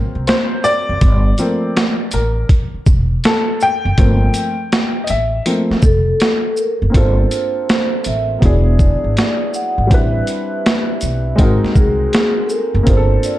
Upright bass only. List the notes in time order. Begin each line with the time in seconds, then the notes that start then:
0.15 C2
0.89 F#1
1.02 G1
2.14 A1
2.74 muted upright bass stroke
2.87 E1
3.85 F#1
3.98 G1
5.10 A1
5.71 muted upright bass stroke
5.83 F1
6.82 F#1
6.95 G1
8.06 A1
8.42 E1
9.04 G#1
9.78 G#1
9.91 A1
11.03 B1
11.39 G#1
11.64 muted upright bass stroke
11.76 C2
12.74 F#1
12.87 G1